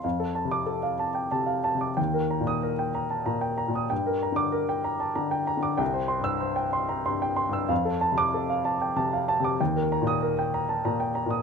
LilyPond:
<<
  \new Staff \with { instrumentName = "Grand piano" } { \time 3/4 \key f \major \tempo 4 = 95 << { r8. d'''8 r4. r16 | r8. ees'''8 r4. r16 | r8. d'''8 r4. r16 | r8. e'''8 r4. r16 |
r8. d'''8 r4. r16 | r8. ees'''8 r4. r16 | } \\ { f''16 a'16 a''8 a'16 f''16 a''16 g''16 a''16 f''16 a''16 d'''16 | g''16 bes'16 bes''8 bes'16 g''16 bes''16 a''16 bes''16 g''16 bes''16 ees'''16 | g''16 bes'16 bes''8 bes'16 g''16 bes''16 a''16 bes''16 g''16 bes''16 d'''16 | g''16 c''16 c'''8 c''16 g''16 c'''16 bes''16 c'''16 g''16 c'''16 e'''16 |
f''16 a'16 a''8 a'16 f''16 a''16 g''16 a''16 f''16 a''16 d'''16 | g''16 bes'16 bes''8 bes'16 g''16 bes''16 a''16 bes''16 g''16 bes''16 ees'''16 | } >> }
  \new Staff \with { instrumentName = "Grand piano" } { \clef bass \time 3/4 \key f \major \tuplet 3/2 { f,4 c8 } r4 \tuplet 3/2 { c4 c8 } | \tuplet 3/2 { ees,4 bes,8 } r4 \tuplet 3/2 { bes,4 bes,8 } | \tuplet 3/2 { g,4 d8 } r4 \tuplet 3/2 { d4 d8 } | \tuplet 3/2 { c,4 g,8 } r4 \tuplet 3/2 { g,4 g,8 } |
\tuplet 3/2 { f,4 c8 } r4 \tuplet 3/2 { c4 c8 } | \tuplet 3/2 { ees,4 bes,8 } r4 \tuplet 3/2 { bes,4 bes,8 } | }
>>